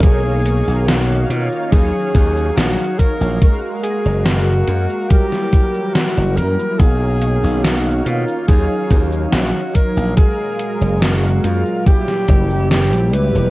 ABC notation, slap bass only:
X:1
M:4/4
L:1/16
Q:1/4=71
K:F#
V:1 name="Slap bass" clef=bass
B,,,3 B,,,3 B,, z D,, z D,,2 A,,, z2 A,,, | z3 F,,,3 F,, z6 F,,, F,, z | B,,,3 B,,,3 B,, z D,, z D,,2 A,,, z2 A,,, | z3 F,,,3 F,, z3 F,,,3 A,,, C,, =E,,, |]